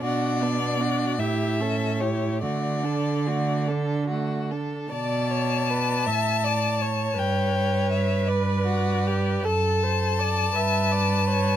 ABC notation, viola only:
X:1
M:6/8
L:1/8
Q:3/8=52
K:Bm
V:1 name="Viola"
D B, D E C E | A, D A, D A, D | d3 e d c | B6 |
A =c d e d ^c |]